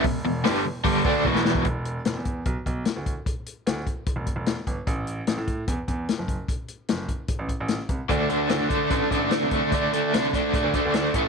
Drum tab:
HH |o---o---o-------|x-x-x-x-x-x-x-x-|x-x-x-x-x-x-x-x-|x-x-x-x-x-x-x-x-|
SD |----o--------oo-|----o-------o---|----o-------o---|----o-------o---|
BD |o-------o-o-o--o|o-----o-o-o---o-|o-----o-o-o---o-|o-----o-o-o---o-|

HH |x-x-x-x-x-x-x-x-|x-x-x-x-x-x-x-x-|x-x-x-x-x-x-x-x-|
SD |----o-------o---|----o-------o---|----o-------o---|
BD |o-----o-o-o---o-|o-----o-o-o---o-|o-----o-o-o---o-|